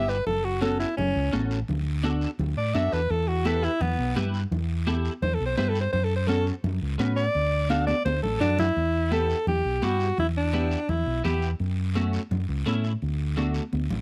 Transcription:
Already playing: fingered electric bass G1, clean electric guitar B3 E4 G4, alto saxophone E5
0.09 alto saxophone B4, short guiro
0.26 fingered electric bass F#1, alto saxophone A4, high conga, low conga, long guiro
0.44 alto saxophone F#4
0.61 clean electric guitar C#4 F#4 A4, alto saxophone A4, high conga, short guiro
0.80 alto saxophone E4, short guiro
0.97 fingered electric bass F#1, alto saxophone C#4, high conga, low conga, long guiro
1.16 fingered electric bass C#2
1.33 fingered electric bass A1, clean electric guitar C#4 F#4 A4, high conga, short guiro
1.51 short guiro
1.68 fingered electric bass D2, high conga, low conga, long guiro
2.03 clean electric guitar D4 F#4 A4, high conga, short guiro
2.21 short guiro
2.39 fingered electric bass D2, high conga, low conga, long guiro
2.57 fingered electric bass A2, alto saxophone D5
2.74 fingered electric bass F#2, clean electric guitar D4 F#4 A4, alto saxophone E5, high conga, short guiro
2.93 fingered electric bass E2, alto saxophone B4, short guiro
3.10 fingered electric bass E2, alto saxophone A4, high conga, long guiro
3.28 alto saxophone F#4
3.45 clean electric guitar E4 G4 B4, alto saxophone A4, high conga, short guiro
3.63 alto saxophone E4, short guiro
3.81 fingered electric bass E2, alto saxophone B3, high conga, low conga, long guiro
3.99 fingered electric bass B1
4.16 fingered electric bass G2, clean electric guitar E4 G4 B4, high conga, low conga, short guiro
4.34 short guiro
4.51 fingered electric bass E2, high conga, low conga, long guiro
4.87 clean electric guitar E4 G4 A4, high conga, short guiro
5.05 short guiro
5.22 fingered electric bass E2, alto saxophone C5, high conga, low conga, long guiro
5.34 alto saxophone A4
5.40 fingered electric bass B1
5.46 alto saxophone C5
5.57 fingered electric bass G2, clean electric guitar E4 G4 B4, alto saxophone C5, high conga, low conga, short guiro
5.69 alto saxophone A4
5.75 short guiro
5.81 alto saxophone C5
5.92 fingered electric bass F#2, alto saxophone C5, high conga, low conga, long guiro
6.04 alto saxophone A4
6.16 alto saxophone C5
6.27 clean electric guitar C#4 F#4 A4, alto saxophone A4, high conga, short guiro
6.47 short guiro
6.64 fingered electric bass F#2, high conga, low conga, long guiro
6.82 fingered electric bass C#2
6.99 fingered electric bass A2, clean electric guitar C#4 F#4 B4, high conga, low conga, short guiro
7.16 alto saxophone D5, short guiro
7.35 fingered electric bass D2, high conga, long guiro
7.70 clean electric guitar D4 F#4 A4, alto saxophone F5, high conga, short guiro
7.87 alto saxophone D5, high conga, short guiro
8.05 fingered electric bass D2, alto saxophone C5, high conga, long guiro
8.23 fingered electric bass A1, alto saxophone A4, low conga
8.40 fingered electric bass F#2, clean electric guitar D4 F#4 A4, alto saxophone D4, low conga, short guiro
8.59 alto saxophone E4, low conga, short guiro
8.76 fingered electric bass E2, high conga, long guiro
9.11 clean electric guitar B3 E4 G4, alto saxophone A4, high conga, short guiro
9.30 short guiro
9.47 fingered electric bass E2, alto saxophone G4, high conga, low conga, long guiro
9.65 fingered electric bass B1
9.82 fingered electric bass G2, clean electric guitar B3 E4 G4, alto saxophone F#4, high conga, short guiro
10.00 short guiro
10.18 fingered electric bass E2, alto saxophone E4, high conga, low conga, long guiro
10.37 alto saxophone D4
10.53 clean electric guitar B3 E4 G4, high conga, short guiro
10.71 short guiro
10.89 fingered electric bass E2, alto saxophone E4, high conga, low conga, long guiro
11.06 fingered electric bass B1
11.24 fingered electric bass E2, clean electric guitar B3 E4 G4, alto saxophone G4, high conga, low conga, short guiro
11.42 short guiro
11.60 fingered electric bass F#2, high conga, long guiro
11.95 clean electric guitar A3 C#4 F#4, high conga, short guiro
12.13 short guiro
12.31 fingered electric bass F#2, high conga, low conga, long guiro
12.49 fingered electric bass C#2
12.66 fingered electric bass A2, clean electric guitar A3 C#4 E4, high conga, short guiro
12.84 short guiro
13.02 fingered electric bass D2, high conga, long guiro
13.37 clean electric guitar A3 D4 F#4, high conga, short guiro
13.54 short guiro
13.73 fingered electric bass D2, high conga, long guiro
13.90 fingered electric bass A1, low conga

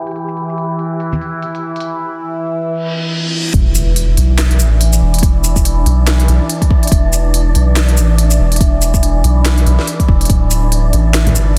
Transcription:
Already playing: synth drone E3 E4, synth texture G4 G5, downlifter
0.07 closed hi-hat
0.11 closed hi-hat
0.16 closed hi-hat
0.28 shaker
0.37 closed hi-hat
0.49 shaker
0.58 closed hi-hat
0.79 closed hi-hat
1.00 closed hi-hat
1.13 closed hi-hat, high conga, shaker
1.21 closed hi-hat
1.43 closed hi-hat
1.55 closed hi-hat
1.76 closed hi-hat
1.80 closed hi-hat
2.69 reverse cymbal
3.54 sub bass E1, synth drone E3 E4, synth texture D4 D5, kick, closed hi-hat, impact
3.75 closed hi-hat, shaker
3.96 closed hi-hat
4.17 sub bass B1, closed hi-hat
4.38 snare, clap, closed hi-hat
4.51 closed hi-hat
4.60 sub bass A1, closed hi-hat, shaker
4.81 closed hi-hat
4.93 closed hi-hat, shaker
5.02 sub bass E1
5.14 closed hi-hat
5.19 closed hi-hat
5.23 kick, closed hi-hat
5.44 closed hi-hat, shaker
5.56 kick, shaker
5.65 closed hi-hat
5.86 sub bass B1, closed hi-hat
6.07 snare, clap, closed hi-hat
6.20 closed hi-hat
6.28 sub bass B1, closed hi-hat
6.50 closed hi-hat
6.62 kick, closed hi-hat
6.71 kick
6.83 closed hi-hat
6.87 closed hi-hat
6.92 sub bass E1, kick, closed hi-hat
7.13 closed hi-hat, shaker
7.34 closed hi-hat
7.55 sub bass B1, closed hi-hat
7.76 snare, clap, closed hi-hat
7.88 closed hi-hat
7.97 sub bass A1, closed hi-hat, shaker
8.18 closed hi-hat
8.31 closed hi-hat, shaker
8.40 sub bass E1
8.52 closed hi-hat
8.56 closed hi-hat
8.61 kick, closed hi-hat
8.82 closed hi-hat, shaker
8.94 kick, shaker
9.03 closed hi-hat
9.24 sub bass B1, closed hi-hat
9.45 snare, clap, closed hi-hat
9.58 closed hi-hat
9.66 sub bass B1, closed hi-hat
9.79 snare
9.87 closed hi-hat
10.00 kick, closed hi-hat
10.08 sub bass E1, kick
10.21 closed hi-hat
10.25 closed hi-hat
10.30 sub bass D1, kick, closed hi-hat
10.51 closed hi-hat, shaker
10.72 closed hi-hat
10.93 sub bass A1, closed hi-hat
11.14 snare, clap, closed hi-hat
11.27 closed hi-hat, high conga, low conga
11.35 sub bass G1, closed hi-hat, shaker

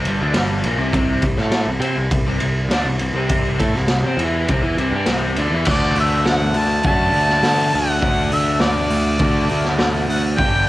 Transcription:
0.05 picked electric bass G1, overdriven electric guitar G2 G3, ride
0.21 picked electric bass D2, overdriven electric guitar D3 D4
0.34 picked electric bass G1, overdriven electric guitar G2 G3, snare, ride
0.63 picked electric bass A#1, overdriven electric guitar A#2 A#3, ride
0.78 picked electric bass C2, overdriven electric guitar C3 C4
0.93 picked electric bass C2, overdriven electric guitar C3 C4, kick, ride
1.22 picked electric bass C2, overdriven electric guitar C3, kick, ride
1.37 picked electric bass A2, overdriven electric guitar A3 A4, snare
1.51 snare, ride
1.67 picked electric bass C2, overdriven electric guitar C3
1.80 picked electric bass C3, overdriven electric guitar C4 C5, ride
1.96 picked electric bass C2, overdriven electric guitar C3
2.11 picked electric bass C2, overdriven electric guitar C3, kick, ride
2.27 picked electric bass C2, overdriven electric guitar C3 C4
2.40 picked electric bass C2, overdriven electric guitar C3, ride
2.69 picked electric bass D2, overdriven electric guitar D3 D4, snare, ride
2.85 picked electric bass C2, overdriven electric guitar C3
2.99 picked electric bass C2, overdriven electric guitar C3, ride
3.13 picked electric bass C2, overdriven electric guitar C3 C4
3.29 kick, ride
3.59 picked electric bass A2, overdriven electric guitar A3 A4, kick, ride
3.74 picked electric bass C2, overdriven electric guitar C3, snare
3.88 picked electric bass C2, overdriven electric guitar C3, snare, ride
4.03 picked electric bass C3, overdriven electric guitar C4 C5
4.17 picked electric bass E2, overdriven electric guitar E3, ride
4.21 overdriven electric guitar E4
4.48 picked electric bass C2, overdriven electric guitar C3 C4, kick, ride
4.62 picked electric bass E2, overdriven electric guitar E3 E4
4.77 picked electric bass C2, overdriven electric guitar C3 C4, ride
4.92 picked electric bass G2, overdriven electric guitar G3
4.96 overdriven electric guitar G4
5.06 picked electric bass C2, overdriven electric guitar C3, snare, ride
5.10 overdriven electric guitar C4
5.36 picked electric bass D2, overdriven electric guitar D3 D4, ride
5.51 picked electric bass E2, overdriven electric guitar E3
5.55 overdriven electric guitar E4
5.65 picked electric bass D2, overdriven electric guitar D3 A3, kick, crash
5.70 overdriven electric guitar D4 F#4, harmonica D5
5.95 picked electric bass D2, open hi-hat
6.00 harmonica E5
6.26 picked electric bass D2, harmonica F#5, snare, open hi-hat
6.54 picked electric bass D2, harmonica A5, open hi-hat
6.83 picked electric bass F#2, overdriven electric guitar D3, harmonica A5, kick, open hi-hat
6.87 overdriven electric guitar A3 D4 F#4
7.13 picked electric bass D2, open hi-hat
7.29 snare
7.43 picked electric bass D3, snare, open hi-hat
7.57 snare
7.72 picked electric bass D2, harmonica F#5, open hi-hat
8.00 picked electric bass D2, overdriven electric guitar D3 A3 D4, kick, open hi-hat
8.06 overdriven electric guitar F#4
8.32 picked electric bass D2, harmonica E5, open hi-hat
8.60 picked electric bass D2, harmonica D5, snare, open hi-hat
8.90 picked electric bass D2, open hi-hat
9.19 picked electric bass D2, overdriven electric guitar D3 A3, kick, open hi-hat
9.23 overdriven electric guitar D4 F#4
9.49 picked electric bass D2, open hi-hat
9.64 snare
9.79 picked electric bass D2, snare, open hi-hat
9.95 snare
10.08 picked electric bass D2, harmonica F#5, open hi-hat
10.37 picked electric bass G1, overdriven electric guitar G2 D3 G3 B3, harmonica G5, kick, open hi-hat
10.42 overdriven electric guitar D4 G4

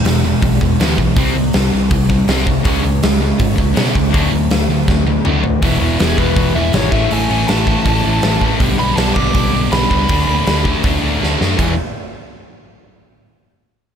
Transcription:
0.04 picked electric bass E1, distorted electric guitar E2 B2 E3 G#3, snare, open hi-hat
0.23 distorted electric guitar E2 B2 E3 G#3
0.42 picked electric bass B1, distorted electric guitar E2 B2 E3 G#3, kick, open hi-hat
0.61 picked electric bass E1, distorted electric guitar E2 B2 E3 G#3, kick
0.80 picked electric bass D2, distorted electric guitar E2 B2 E3 G#3 B3, snare, open hi-hat
0.98 picked electric bass B1, distorted electric guitar E2 B2 E3 G#3, kick
1.16 picked electric bass C2, distorted electric guitar C3 G3 C4, kick, open hi-hat
1.35 picked electric bass C2, distorted electric guitar C3 G3
1.53 picked electric bass C2, distorted electric guitar C3 G3, snare, open hi-hat
1.73 picked electric bass C2, distorted electric guitar C3 G3
1.91 picked electric bass C2, distorted electric guitar C3 G3, kick, open hi-hat
2.10 distorted electric guitar C3 G3, kick
2.28 picked electric bass C2, distorted electric guitar C3 G3 C4, snare, open hi-hat
2.47 distorted electric guitar C3 G3, kick
2.65 picked electric bass C#2, distorted electric guitar C#3 G#3 C#4, kick, open hi-hat
2.84 picked electric bass C#2, distorted electric guitar C#3 G#3
3.03 picked electric bass C#2, distorted electric guitar C#3 G#3, snare, open hi-hat
3.22 distorted electric guitar C#3 G#3
3.39 picked electric bass G#2, distorted electric guitar C#3 G#3, kick, open hi-hat
3.58 picked electric bass C#2, distorted electric guitar C#3 G#3, kick
3.76 picked electric bass B2, distorted electric guitar C#3 G#3 C#4, snare, open hi-hat
3.95 picked electric bass C#2, distorted electric guitar C#3 G#3, kick
4.12 picked electric bass D2, distorted electric guitar D3 F#3 A3 D4, kick, open hi-hat
4.32 picked electric bass D2, distorted electric guitar D3 F#3 A3
4.50 picked electric bass D2, distorted electric guitar D3 F#3 A3, snare, open hi-hat
4.69 picked electric bass D2, distorted electric guitar D3 F#3 A3
4.88 picked electric bass D2, distorted electric guitar D3 F#3 A3, kick, snare
5.06 distorted electric guitar D3 F#3 A3, high tom
5.25 picked electric bass D2, distorted electric guitar D3 F#3 A3 D4, mid tom
5.43 distorted electric guitar D3 F#3 A3, floor tom
5.61 picked electric bass E1, distorted electric guitar E2 B2 E3 G#3 B3 E4, kick, open hi-hat
5.80 picked electric bass E1, distorted electric guitar E2 B2 E3 G#3 B3 E4
5.98 picked electric bass E1, distorted electric guitar E2 B2 E3 G#3 B3 E4, lead electric guitar G#4, snare, open hi-hat
6.18 picked electric bass E1, distorted electric guitar E2 B2 E3 G#3 B3 E4, lead electric guitar B4, kick
6.36 picked electric bass E1, distorted electric guitar E2 B2 E3 G#3 B3 E4, kick, open hi-hat
6.54 picked electric bass E1, distorted electric guitar E2 B2 E3 G#3 B3 E4, lead electric guitar E5
6.73 picked electric bass G#1, distorted electric guitar E2 B2 E3 G#3 B3 E4, lead electric guitar C#5, snare, open hi-hat
6.92 picked electric bass A1, distorted electric guitar A2 E3 A3 C#4 E4, lead electric guitar E5, kick
7.11 picked electric bass A1, distorted electric guitar A2 E3 A3 C#4 E4, lead electric guitar G#5, open hi-hat
7.30 picked electric bass A1, distorted electric guitar A2 E3 A3 C#4 E4
7.48 picked electric bass A1, distorted electric guitar A2 E3 A3 C#4 E4, lead electric guitar A5, snare, open hi-hat
7.66 distorted electric guitar A2 E3 A3 C#4 E4, kick
7.85 picked electric bass A1, distorted electric guitar A2 E3 A3 C#4 E4, kick, open hi-hat
8.04 picked electric bass A1, distorted electric guitar A2 E3 A3 C#4 E4
8.22 picked electric bass A1, distorted electric guitar A2 E3 A3 C#4 E4, snare, open hi-hat
8.41 picked electric bass A1, distorted electric guitar A2 E3 A3 C#4 E4, kick
8.59 picked electric bass B1, distorted electric guitar G2 B2 D3 G3 B3 D4, kick, open hi-hat
8.77 picked electric bass B1, distorted electric guitar G2 B2 D3 G3 B3 D4, lead electric guitar B5
8.94 picked electric bass B1, distorted electric guitar G2 B2 D3 G3 B3, lead electric guitar A5, snare, open hi-hat
8.99 distorted electric guitar D4
9.15 picked electric bass B1, distorted electric guitar G2 B2 D3 G3 B3 D4, lead electric guitar D6, kick
9.33 picked electric bass B1, distorted electric guitar G2 B2 D3 G3 B3 D4, kick, open hi-hat
9.52 picked electric bass B1, distorted electric guitar G2 B2 D3 G3 B3 D4
9.70 picked electric bass B1, distorted electric guitar G2 B2 D3 G3 B3 D4, lead electric guitar B5, snare, open hi-hat
9.90 picked electric bass C#2, distorted electric guitar G2 B2 D3 G3 B3 D4, kick
10.09 picked electric bass D2, distorted electric guitar D3 F#3 A3 D4, kick, open hi-hat
10.28 picked electric bass D2, distorted electric guitar D3 F#3 A3 D4
10.46 picked electric bass D2, distorted electric guitar D3 F#3 A3 D4, snare, open hi-hat
10.65 distorted electric guitar D3 F#3 A3 D4, kick
10.83 picked electric bass D2, distorted electric guitar D3 F#3 A3 D4, kick, open hi-hat
11.01 picked electric bass D2, distorted electric guitar D3 F#3 A3 D4
11.19 picked electric bass D2, distorted electric guitar D3 F#3 A3 D4, snare
11.39 picked electric bass F#2, distorted electric guitar D3 F#3 A3 D4, snare
11.56 picked electric bass E1, distorted electric guitar E2 B2 E3 G#3 B3 E4 G#4, kick, crash

